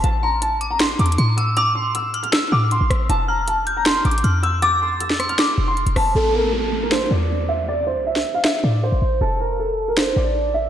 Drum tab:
HH |x-----------x-----x-----x-----x-x-x-x-----x-----|x-----------x-----x--x--x-----------x-----x-----|x-----------x-----x-----x-----x-x-x-x-----x-----|x-----------x-----x--x--x-----------x--x--o-----|
SD |------------------------o-----------------------|------------------------o-----------------r-----|------------------------o-----------------------|---------------o--r-----o-----------------r-----|

HH |------------------------------------------------|------------------------------------------------|------------------------------------------------|
SD |------------------------o-----------------------|---------------o--------o-----------------------|------------------------o-----------------------|